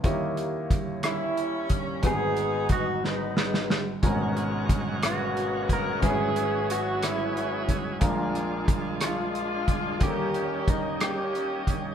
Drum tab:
HH |x-x-x-x-x-x-|x-x-x-------|x-x-x-x-x-x-|x-x-x-x-x-x-|
SD |----r-r-----|------o-ooo-|----r-r-----|------r-----|
BD |o---o-----o-|o---o-------|o---o-----o-|o---------o-|

HH |x-x-x-x-x-x-|x-x-x-x-x-x-|
SD |----r-r-----|------r-----|
BD |o---o-----o-|o---o-----o-|